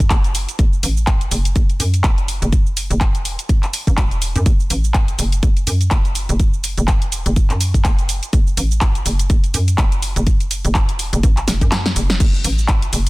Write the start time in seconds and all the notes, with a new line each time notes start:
0.00 kick, closed hi-hat, shaker
0.10 F#1, kick, clap, closed hi-hat, shaker
0.24 closed hi-hat, shaker
0.35 open hi-hat, shaker
0.49 closed hi-hat, shaker
0.59 F#1, kick, closed hi-hat, shaker
0.73 shaker
0.83 A1, open hi-hat, shaker
0.97 shaker
1.07 kick, clap, closed hi-hat, shaker
1.21 closed hi-hat, shaker
1.31 F#1, open hi-hat, shaker
1.45 closed hi-hat, shaker
1.56 F#1, kick, closed hi-hat, shaker
1.70 closed hi-hat, shaker
1.80 F#2, open hi-hat, shaker
1.94 closed hi-hat, shaker
2.04 F#1, kick, clap, closed hi-hat, shaker
2.18 closed hi-hat, shaker
2.28 open hi-hat, shaker
2.42 F#1, closed hi-hat, shaker
2.52 kick, closed hi-hat, shaker
2.66 shaker
2.77 open hi-hat, shaker
2.90 F#1, closed hi-hat, shaker
3.01 kick, clap, closed hi-hat, shaker
3.15 closed hi-hat, shaker
3.25 open hi-hat, shaker
3.39 closed hi-hat, shaker
3.49 kick, closed hi-hat, shaker
3.63 clap, closed hi-hat, shaker
3.73 open hi-hat, shaker
3.87 A1, kick, closed hi-hat, shaker
3.97 E1, kick, clap, closed hi-hat, shaker
4.11 closed hi-hat, shaker
4.22 open hi-hat, shaker
4.36 F#2, closed hi-hat, shaker
4.46 F#1, kick, closed hi-hat, shaker
4.60 shaker
4.70 A1, open hi-hat, shaker
4.84 shaker
4.94 kick, clap, closed hi-hat, shaker
5.08 closed hi-hat, shaker
5.19 F#1, open hi-hat, shaker
5.32 closed hi-hat, shaker
5.43 F#1, kick, closed hi-hat, shaker
5.57 closed hi-hat, shaker
5.67 F#2, open hi-hat, shaker
5.81 closed hi-hat, shaker
5.91 F#1, kick, clap, closed hi-hat, shaker
6.05 closed hi-hat, shaker
6.15 open hi-hat, shaker
6.29 F#1, closed hi-hat, shaker
6.40 kick, closed hi-hat, shaker
6.54 shaker
6.64 open hi-hat, shaker
6.78 F#1, closed hi-hat, shaker
6.88 kick, clap, closed hi-hat, shaker
7.02 closed hi-hat, shaker
7.12 open hi-hat, shaker
7.26 F#1, closed hi-hat, shaker
7.36 kick, closed hi-hat, shaker
7.50 F#2, clap, closed hi-hat, shaker
7.61 open hi-hat, shaker
7.74 kick, closed hi-hat, shaker
7.85 F#1, kick, clap, closed hi-hat, shaker
7.99 closed hi-hat, shaker
8.09 open hi-hat, shaker
8.23 closed hi-hat, shaker
8.33 F#1, kick, closed hi-hat, shaker
8.47 shaker
8.57 A1, open hi-hat, shaker
8.71 shaker
8.81 kick, clap, closed hi-hat, shaker
8.95 closed hi-hat, shaker
9.06 F#1, open hi-hat, shaker
9.19 closed hi-hat, shaker
9.30 F#1, kick, closed hi-hat, shaker
9.44 closed hi-hat, shaker
9.54 F#2, open hi-hat, shaker
9.68 closed hi-hat, shaker
9.78 F#1, kick, clap, closed hi-hat, shaker
9.92 closed hi-hat, shaker
10.02 open hi-hat, shaker
10.16 F#1, closed hi-hat, shaker
10.27 kick, closed hi-hat, shaker
10.40 closed hi-hat, shaker
10.51 open hi-hat, shaker
10.65 F#1, closed hi-hat, shaker
10.75 kick, clap, closed hi-hat, shaker
10.89 closed hi-hat, shaker
10.99 open hi-hat, shaker
11.13 F#1, closed hi-hat, shaker
11.23 A1, kick, closed hi-hat, shaker
11.37 clap, closed hi-hat, shaker
11.48 F#1, snare, open hi-hat, shaker
11.61 F#2, kick, closed hi-hat, shaker
11.72 snare, clap, closed hi-hat, shaker
11.86 snare, closed hi-hat, shaker
11.96 F#1, open hi-hat, shaker
12.10 snare, closed hi-hat, shaker
12.20 F#1, kick, closed hi-hat, crash, shaker
12.34 shaker
12.44 A1, open hi-hat, shaker
12.58 shaker
12.68 kick, clap, closed hi-hat, shaker
12.82 closed hi-hat, shaker
12.93 F#1, open hi-hat, shaker